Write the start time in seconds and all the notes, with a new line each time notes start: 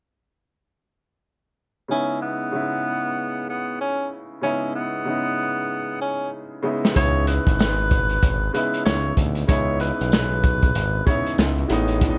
1.88 C#3 G#3 B3 C#4 D#4 E4
2.22 B3
2.52 C#3 G#3 B3 D#4 E4
3.49 B3
3.81 C#4
4.41 C#3 G#3 B3 C#4 D#4 E4
4.75 B3
5.05 C#3 G#3 B3 D#4 E4
6.01 C#4
6.62 C#3 G#3 B3 D#4 E4
6.85 snare
6.94 C#2 C#3 G#3 B3 D#4 E4 C#5, kick, closed hi-hat
7.27 B4, closed hi-hat
7.47 G#1, kick, closed hi-hat
7.59 snare, tambourine
7.91 kick, closed hi-hat
8.10 closed hi-hat
8.23 G#1, kick, closed hi-hat
8.53 C#3 G#3 B3 D#4 E4 B4, closed hi-hat
8.74 closed hi-hat
8.85 C#2 C#5, snare, tambourine
9.17 D2, kick, closed hi-hat
9.35 closed hi-hat
9.47 C#2 C#3 G#3 B3 D#4 E4 C#5, kick, closed hi-hat
9.80 B4, closed hi-hat
10.00 B1, closed hi-hat
10.12 snare, tambourine
10.43 kick, closed hi-hat
10.62 kick, closed hi-hat
10.75 G#1, closed hi-hat
11.05 C#3 G#3 B3 D#4 E4 C#5, kick, closed hi-hat
11.26 closed hi-hat
11.38 C#2, snare, tambourine
11.58 closed hi-hat
11.68 A1 A2 E3 G#3 B3 C#4 D#4, closed hi-hat
11.88 closed hi-hat
12.00 A2 E3 G#3 B3 C#4 D4, kick, closed hi-hat
12.10 D#4